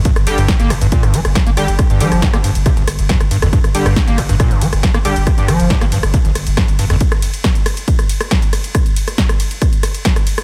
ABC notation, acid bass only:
X:1
M:4/4
L:1/16
Q:1/4=138
K:Gm
V:1 name="Acid bass" clef=bass
G,, z2 G,, z B, G,, G,, B,, G,, F, z2 B, z2 | z G,, F,2 G,, B, G,, z C, G,,, z2 G,, z G,, F,, | G,, z2 G,, z B, G,, G,, B,, G,, F, z2 B, z2 | z G,, F,2 G,, B, G,, z C, G,,, z2 G,, z G,, F,, |
z16 | z16 |]